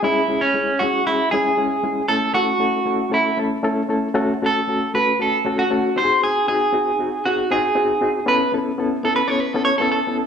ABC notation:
X:1
M:4/4
L:1/16
Q:1/4=117
K:A
V:1 name="Clean electric guitar"
E3 C3 F2 E2 G6 | A2 F6 E2 z6 | z2 A4 B2 A3 F3 ^B2 | G2 G6 F2 G6 |
B2 z4 A B c B A c A A2 z |]
V:2 name="Reed electric piano"
[G,CEG]2 [G,CEG]2 [G,CEG]2 [G,CEG]2 [G,CEG]2 [G,CEG]2 [G,CEG]2 [G,CEG]2 | [A,CEA]2 [A,CEA]2 [A,CEA]2 [A,CEA]2 [A,CEA]2 [A,CEA]2 [A,CEA]2 [A,CEA]2 | [A,CFA]2 [A,CFA]2 [A,CFA]2 [A,CFA]2 [A,CFA]2 [A,CFA]2 [A,CFA]2 [^B,^DF=G^G]2- | [^B,^DF=G^G]2 [B,DFG]2 [B,DFG]2 [B,DFG]2 [B,DFG]2 [B,DFG]2 [B,DFG]2 [B,DFG]2 |
[B,CEA]2 [B,CEA]2 [B,CEA]2 [B,CEA]2 [B,CEA]2 [B,CEA]2 [B,CEA]2 [B,CEA]2 |]